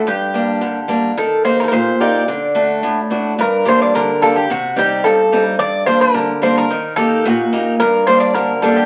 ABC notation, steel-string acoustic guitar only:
X:1
M:2/4
L:1/8
Q:1/4=109
K:none
V:1 name="Steel-string acoustic guitar"
G,, [G,_B,D] D, [G,B,D] | _E, [_B,_EG] _B,, [B,EG] | D, [A,D^F] A,, [A,DF] | G,, [G,_B,D] D, [G,B,D] |
C, [G,C_E] G,, [G,CE] | G,, [G,_B,D] D, [G,B,D] | _E, [_B,_EG] _B,, [B,EG] | G,, [G,_B,D] D, [G,B,D] |]